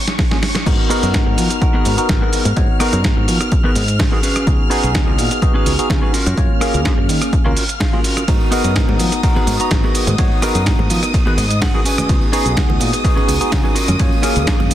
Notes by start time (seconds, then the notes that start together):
Already playing: C#6
0.08 snare, closed hi-hat
0.19 kick, snare, open hi-hat, tambourine
0.31 A#3 C#4 F4 G#4, snare, tambourine
0.42 muted clean electric guitar stroke, snare, open hi-hat, tambourine, high conga
0.55 muted clean electric guitar stroke, snare, closed hi-hat, tambourine
0.66 G#2 B3 D#4 F#4 A#4 F6, kick, closed hi-hat, crash, shaker
0.89 B3 D#4 F#4 G#4 A#4, open hi-hat, shaker
1.03 F#2, closed hi-hat, shaker
1.14 G#2, kick, snare, closed hi-hat, shaker
1.26 G#2, muted clean electric guitar stroke
1.38 F3, muted clean electric guitar stroke, open hi-hat, shaker
1.50 muted clean electric guitar stroke, closed hi-hat, shaker
1.61 B3 D#4 F#4 A#4, kick, closed hi-hat, shaker
1.74 B3 F#4 G#4 A#4
1.85 G#2, open hi-hat, shaker
1.97 B3 D#4 F#4 A#4, muted fingered electric bass stroke, closed hi-hat, shaker
2.09 G#1, muted clean electric guitar stroke, kick, snare, closed hi-hat, shaker
2.22 B3 F#4 G#4 A#4
2.33 open hi-hat, shaker
2.45 G#2, closed hi-hat, shaker
2.56 G#2 B3 D#4 F#4 C#5, kick, closed hi-hat, shaker
2.79 B3 D#4 F#4 G#4 A#4, cross-stick, open hi-hat, shaker
2.93 F#2, closed hi-hat, shaker
3.04 G#2, kick, snare, closed hi-hat, shaker
3.17 G#2, muted clean electric guitar stroke
3.28 F3, muted clean electric guitar stroke, open hi-hat, shaker
3.41 muted clean electric guitar stroke, cross-stick, closed hi-hat, shaker
3.52 kick, closed hi-hat, shaker
3.64 B3 D#4 F#4 G#4 A#4 B4
3.75 G#2, open hi-hat, shaker
3.88 closed hi-hat, shaker
3.99 muted clean electric guitar stroke, kick, snare, open hi-hat, shaker
4.11 B3 D#4 F#4 G#4 A#4
4.22 C#4 F#4 G#4 B4, open hi-hat, shaker
4.36 cross-stick, closed hi-hat, shaker
4.47 C#2 B3 D#4 F#4 G#4, kick, closed hi-hat, shaker
4.70 B3 C#4 D#4 F#4 G#4 B4, open hi-hat, shaker
4.83 B1, closed hi-hat, shaker
4.95 C#2, kick, snare, closed hi-hat, shaker
5.07 C#2, muted clean electric guitar stroke
5.18 A#2, muted clean electric guitar stroke, open hi-hat, shaker
5.31 muted clean electric guitar stroke, closed hi-hat, shaker
5.42 B3 D#4 F#4 G#4, kick, closed hi-hat, shaker
5.54 C#4 F#4 G#4 B4
5.66 C#2, open hi-hat, shaker
5.78 B3 D#4 F#4 G#4, muted fingered electric bass stroke, closed hi-hat, shaker
5.90 C#3, muted clean electric guitar stroke, kick, snare, closed hi-hat, shaker
6.02 C#4 F#4 G#4 B4
6.13 C#4 F4 F#4 A#4, open hi-hat, shaker
6.27 F#2, closed hi-hat, shaker
6.37 A#3 C#4 F4 C#5, kick, closed hi-hat, shaker
6.60 A#3 C#4 F4 F#4 G#4 A#4 F5, cross-stick, open hi-hat, shaker
6.74 C#2, closed hi-hat, shaker
6.85 F#2, kick, snare, closed hi-hat, shaker
6.98 F#2, muted clean electric guitar stroke
7.09 D#3, muted clean electric guitar stroke, open hi-hat, shaker
7.21 muted clean electric guitar stroke, cross-stick, closed hi-hat, shaker
7.33 kick, closed hi-hat, shaker
7.45 C#2 A#3 C#4 F4 F#4 A#4
7.57 open hi-hat, shaker
7.69 closed hi-hat, shaker
7.80 F5, muted clean electric guitar stroke, kick, snare, open hi-hat, shaker
7.93 A#3 C#4 F4 F#4 G#4 A#4
8.04 open hi-hat, shaker
8.17 cross-stick, closed hi-hat, shaker
8.28 G#2 B3 D#4 F#4 A#4 D#6, kick, closed hi-hat, ride, tambourine, shaker
8.40 tambourine
8.51 B3 D#4 F#4 G#4 A#4, open hi-hat, tambourine, shaker
8.64 F#2, closed hi-hat, tambourine, shaker
8.76 G#2, kick, snare, closed hi-hat, ride, tambourine, shaker
8.88 G#2, muted clean electric guitar stroke, high conga, low conga
8.99 F3, muted clean electric guitar stroke, open hi-hat, tambourine, shaker
9.12 muted clean electric guitar stroke, closed hi-hat, tambourine, shaker
9.23 B3 D#4 F#4 A#4, kick, closed hi-hat, ride, tambourine, shaker
9.36 B3 F#4 G#4 B4, tambourine, low conga
9.47 G#2, open hi-hat, tambourine, high conga, shaker
9.59 B3 D#4 F#4 A#5, muted fingered electric bass stroke, closed hi-hat, tambourine, shaker
9.71 G#1, muted clean electric guitar stroke, kick, snare, closed hi-hat, ride, shaker
9.83 B3 F#4 G#4 A#4, tambourine
9.95 open hi-hat, tambourine, shaker
10.07 G#2, closed hi-hat, tambourine, high conga, low conga, shaker
10.18 G#2 B3 D#4 F#4 C#5, kick, closed hi-hat, ride, tambourine, shaker
10.32 tambourine
10.42 B3 D#4 F#4 G#4 A#4, cross-stick, open hi-hat, tambourine, shaker
10.55 F#2, closed hi-hat, tambourine, shaker
10.66 G#2, kick, snare, closed hi-hat, ride, shaker
10.79 G#2, muted clean electric guitar stroke, high conga, low conga
10.90 F3, muted clean electric guitar stroke, open hi-hat, tambourine, shaker
11.03 muted clean electric guitar stroke, cross-stick, closed hi-hat, tambourine, shaker
11.14 kick, closed hi-hat, ride, tambourine, shaker
11.26 B3 D#4 F#4 G#4 A#4 B4, tambourine, low conga
11.38 G#2 D#5, open hi-hat, tambourine, high conga, shaker
11.51 closed hi-hat, tambourine, shaker
11.61 F#5, muted clean electric guitar stroke, kick, snare, open hi-hat, ride, tambourine, shaker
11.74 B3 D#4 F#4 G#4 A#4, tambourine
11.85 C#4 F#4 G#4 B4 G#5, open hi-hat, tambourine, shaker
11.98 cross-stick, closed hi-hat, tambourine, high conga, low conga, shaker
12.09 C#2 B3 D#4 F#4 G#4, kick, closed hi-hat, ride, tambourine, shaker
12.21 tambourine
12.32 B3 C#4 D#4 F#4 G#4 B4, open hi-hat, tambourine, shaker
12.46 B1, closed hi-hat, tambourine, shaker
12.57 C#2, kick, snare, closed hi-hat, ride, tambourine, shaker
12.69 C#2, muted clean electric guitar stroke, high conga, low conga
12.80 A#2, muted clean electric guitar stroke, open hi-hat, tambourine, shaker
12.93 muted clean electric guitar stroke, closed hi-hat, tambourine, shaker
13.04 B3 D#4 F#4 G#4, kick, closed hi-hat, ride, tambourine, shaker
13.16 C#4 F#4 G#4 B4, tambourine, low conga
13.28 C#2, open hi-hat, tambourine, high conga, shaker
13.40 B3 D#4 F#4 G#4, muted fingered electric bass stroke, closed hi-hat, tambourine, shaker
13.51 C#3, muted clean electric guitar stroke, kick, snare, closed hi-hat, ride, tambourine, shaker
13.64 C#4 F#4 G#4 B4, tambourine
13.74 C#4 F4 F#4 A#4, open hi-hat, tambourine, shaker
13.88 F#2, closed hi-hat, tambourine, high conga, low conga, shaker
13.99 F#2 A#3 C#4 F4 C#5, kick, closed hi-hat, ride, tambourine, shaker
14.12 tambourine
14.22 A#3 C#4 F4 F#4 G#4 A#4 F5, cross-stick, open hi-hat, tambourine, shaker
14.36 C#2, closed hi-hat, tambourine, shaker
14.47 F#2, kick, snare, closed hi-hat, ride, tambourine, shaker
14.59 F#2, muted clean electric guitar stroke, tambourine, high conga, low conga
14.70 D#3, muted clean electric guitar stroke, open hi-hat, tambourine, shaker